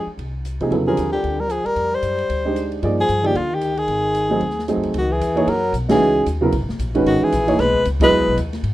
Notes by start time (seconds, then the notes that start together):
0.07 muted upright bass stroke
0.18 C2, ride
0.45 hi-hat pedal, ride
0.60 C3 F3 A#3 D#4 G#4, ride
0.70 F2 C#3 F#3 B3 E4 A4, ride
0.87 D3 F3 G3 C4 F4 G#4 A#4
0.97 D#2, hi-hat pedal, ride
1.13 D3 G4
1.24 D2, ride
1.40 G3 A#4
1.49 F3 G#4, hi-hat pedal, ride
1.65 D#2 G3 A#4, ride
1.76 F2, ride
1.92 G3 C5
2.02 F#2, hi-hat pedal, ride
2.18 ride
2.29 D2, ride
2.45 G#3 D4 D#4 G4 C5
2.56 hi-hat pedal, ride
2.72 ride
2.83 G2 F3 A#3 D#4 G#4 D5, ride
2.98 F3 G#4
3.09 G2, hi-hat pedal, ride
3.22 D#3 F3 A#3 D#4 G4 G#4 D5, ride
3.31 D2 D3
3.35 F4, ride
3.51 D#3 G4
3.61 hi-hat pedal, ride
3.76 D#3 G#4, ride
3.88 G#1, ride
4.14 hi-hat pedal, ride
4.30 F#3 A3 C4 D#4 G#4
4.41 D#2, ride
4.50 snare
4.59 snare
4.68 F#3 A3 C4 D#4 G#4, hi-hat pedal, ride
4.77 F#2
4.83 C2, ride
4.94 C#2 D#3, ride
4.98 F#4
5.11 E3 G#4
5.20 D#2, hi-hat pedal, ride
5.36 E3 A#3 D#4 G#4 C#5, ride
5.47 F#2 F#3 A#4, ride
5.72 B1, hi-hat pedal, ride
5.89 G#3 C#4 D#4 F#4 G#4, snare, ride
5.93 E3
5.99 C#2
6.26 D#2, hi-hat pedal, ride
6.41 C#3 F#3 B3 E4 A#4
6.52 B1, ride
6.60 G#1
6.69 E1, snare
6.79 A#1, hi-hat pedal, ride
6.95 D#3 G#3 C#4 F#4 B4, ride
7.04 G#1 D#3 F#4, ride
7.20 E3 G#4, muted upright bass stroke
7.32 A#1, hi-hat pedal, ride
7.47 E3 A#3 D#4 G#4 C#5, ride
7.58 B1 G#3 B4, snare, ride
7.74 kick
7.85 C#2, hi-hat pedal, ride
8.00 F#3 G#3 B3 E4 B4 D#5, kick, ride
8.10 E2
8.20 C#2
8.28 B1
8.37 D#2, hi-hat pedal, ride
8.53 snare, ride
8.63 G#2, ride